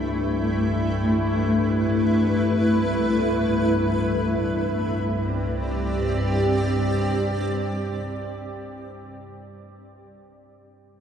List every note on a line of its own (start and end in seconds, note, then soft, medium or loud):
0.00 4.42 C2 medium
0.00 4.41 G2 medium
0.00 4.41 A3 medium
0.00 4.40 E4 medium
0.00 4.44 G4 medium
0.20 4.41 B4 medium
4.40 8.53 C2 medium
4.40 8.53 G2 medium
4.40 8.51 C4 medium
4.58 8.68 G4 medium
4.71 8.81 D5 medium